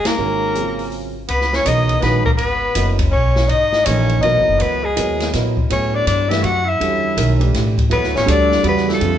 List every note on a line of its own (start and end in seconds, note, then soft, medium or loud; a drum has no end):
0.05 0.92 A#3 medium
0.05 0.93 A#4 medium
0.05 muted upright bass stroke soft
0.05 snare medium
0.05 ride medium
0.18 1.25 G#1 medium
0.18 0.54 D#3 medium
0.18 0.54 G#3 medium
0.18 0.54 C#4 medium
0.18 0.54 F#4 medium
0.18 0.54 A#4 medium
0.55 1.11 C#3 soft
0.55 1.11 F#3 soft
0.55 1.11 C4 soft
0.55 1.11 F4 soft
0.55 1.11 G#4 medium
0.55 closed hi-hat medium
0.79 open hi-hat soft
0.92 open hi-hat soft
1.29 1.64 C#2 medium
1.29 1.54 B3 medium
1.29 1.57 B4 medium
1.29 ride medium
1.41 snare soft
1.53 1.67 C#4 medium
1.53 1.69 C#5 loud
1.53 snare soft
1.65 2.01 B1 medium
1.65 2.01 C#3 soft
1.65 2.01 E3 soft
1.65 2.01 F#3 soft
1.65 2.01 B3 soft
1.65 2.00 D#4 medium
1.65 2.01 A#4 medium
1.65 2.03 D#5 medium
1.65 hi-hat pedal medium
1.65 ride medium
1.89 ride soft
2.00 2.38 A#1 medium
2.00 2.23 D#3 medium
2.00 2.23 G#3 medium
2.00 2.23 B3 medium
2.00 2.24 C#4 medium
2.00 2.24 F#4 medium
2.00 2.24 B4 medium
2.00 2.25 B4 medium
2.00 snare soft
2.00 ride soft
2.25 2.31 A#3 medium
2.25 2.32 A#4 medium
2.25 kick medium
2.37 2.75 G#1 medium
2.37 2.95 B3 medium
2.37 2.95 B4 loud
2.37 ride medium
2.75 3.11 F#1 medium
2.75 2.97 F#3 medium
2.75 2.97 B3 soft
2.75 2.97 E4 medium
2.75 2.97 A#4 medium
2.75 2.97 D#5 medium
2.75 hi-hat pedal medium
2.75 ride medium
2.99 kick medium
2.99 ride medium
3.11 3.48 B1 medium
3.11 3.49 C#4 medium
3.11 3.51 C#5 loud
3.36 snare soft
3.48 3.85 G#1 medium
3.48 3.86 D#4 medium
3.48 3.87 D#5 loud
3.48 ride medium
3.72 snare soft
3.85 4.22 A#1 loud
3.85 4.22 E3 medium
3.85 4.22 A#3 medium
3.85 4.20 C#4 medium
3.85 4.22 D#4 medium
3.85 4.22 G#4 medium
3.85 4.22 C#5 medium
3.85 hi-hat pedal medium
3.85 ride medium
4.09 ride soft
4.21 4.36 B1 medium
4.21 4.79 E3 medium
4.21 4.79 F#3 medium
4.21 4.79 B3 medium
4.21 4.60 D#4 medium
4.21 4.79 A#4 medium
4.21 4.63 D#5 medium
4.21 4.79 D#5 medium
4.21 ride medium
4.36 4.48 G#1 medium
4.49 4.60 F#1 medium
4.59 4.96 C#2 medium
4.59 4.85 B3 medium
4.59 4.87 B4 medium
4.59 ride medium
4.83 5.33 G#3 medium
4.83 5.34 G#4 medium
4.96 5.33 D#2 medium
4.96 5.32 F#3 medium
4.96 5.32 B3 medium
4.96 5.32 E4 medium
4.96 5.32 A#4 medium
4.96 5.32 D#5 medium
4.96 hi-hat pedal medium
4.96 ride medium
5.20 snare soft
5.20 ride soft
5.33 5.69 A#2 medium
5.33 5.55 F#3 medium
5.33 5.55 B3 medium
5.33 5.55 E4 medium
5.33 5.55 A#4 medium
5.33 5.55 D#5 medium
5.33 snare soft
5.33 hi-hat pedal soft
5.33 ride medium
5.57 kick soft
5.70 6.06 A2 medium
5.70 6.26 F#3 medium
5.70 6.26 B3 medium
5.70 5.96 C#4 medium
5.70 6.26 E4 medium
5.70 6.26 A4 soft
5.70 6.26 C#5 medium
5.70 5.97 C#5 medium
5.70 ride medium
5.95 6.06 D4 medium
5.95 6.07 D5 medium
6.07 6.42 G2 medium
6.07 6.31 D4 medium
6.07 6.34 D5 medium
6.07 hi-hat pedal medium
6.07 ride medium
6.29 6.42 E3 medium
6.29 6.42 A3 medium
6.29 6.42 D4 medium
6.29 6.44 E4 medium
6.29 6.42 G4 medium
6.29 6.42 B4 medium
6.29 6.46 E5 medium
6.29 snare medium
6.29 ride soft
6.42 6.79 F#2 medium
6.42 6.66 F#4 medium
6.42 6.70 F#5 loud
6.42 ride medium
6.65 7.39 E4 medium
6.69 7.41 E5 medium
6.80 7.16 E2 medium
6.80 7.16 D3 medium
6.80 7.16 G3 medium
6.80 7.15 C#4 medium
6.80 7.15 F#4 medium
6.80 7.16 A4 medium
6.80 ride medium
7.16 7.53 B1 loud
7.16 7.38 D#3 medium
7.16 7.38 G#3 medium
7.16 7.38 C#4 medium
7.16 7.38 F#4 medium
7.16 7.38 A#4 medium
7.16 hi-hat pedal medium
7.16 ride medium
7.40 7.72 E3 medium
7.40 7.72 A3 medium
7.40 7.72 D4 medium
7.40 7.72 G4 medium
7.40 7.73 B4 medium
7.40 ride soft
7.54 7.90 A1 medium
7.54 snare soft
7.54 hi-hat pedal soft
7.54 ride medium
7.78 kick medium
7.78 ride soft
7.90 8.04 E2 medium
7.90 8.25 F#3 medium
7.90 8.26 B3 medium
7.90 8.13 B3 medium
7.90 8.25 E4 medium
7.90 8.25 A4 medium
7.90 8.14 B4 loud
7.90 8.26 C#5 medium
7.90 ride medium
8.03 8.15 D2 medium
8.03 snare soft
8.15 8.26 A1 medium
8.15 8.30 C#4 medium
8.15 8.33 C#5 loud
8.15 snare soft
8.26 8.63 D2 medium
8.26 8.62 D3 medium
8.26 8.62 G3 medium
8.26 8.62 D4 medium
8.26 8.64 D4 medium
8.26 8.62 F#4 medium
8.26 8.62 A4 medium
8.26 hi-hat pedal medium
8.26 ride medium
8.32 8.66 D5 loud
8.51 snare soft
8.63 8.99 E2 medium
8.63 9.00 C#3 medium
8.63 8.99 G3 medium
8.63 8.86 B3 medium
8.63 9.00 F#4 medium
8.63 9.00 B4 medium
8.63 9.00 D5 medium
8.63 ride medium
8.69 8.88 B4 loud
8.77 snare soft
8.89 9.18 A3 medium
8.89 snare soft
8.94 9.18 A4 medium
9.00 9.18 F2 medium
9.00 9.18 D3 medium
9.00 9.18 G3 medium
9.00 9.18 C4 medium
9.00 9.18 F4 medium
9.00 9.18 A4 medium
9.00 ride medium